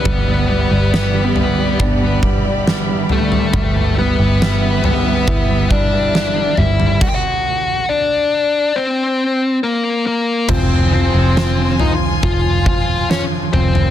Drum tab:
CC |----------------|----------------|x---------------|x---------------|
SD |----o-------o---|----o-------o---|----------------|----o-------o---|
FT |o-----o-o-----oo|o-----o-o-----oo|----------------|o-----o-o-----oo|
BD |o-------o-o-----|o-------o-o-----|o---------------|o-------o-o-----|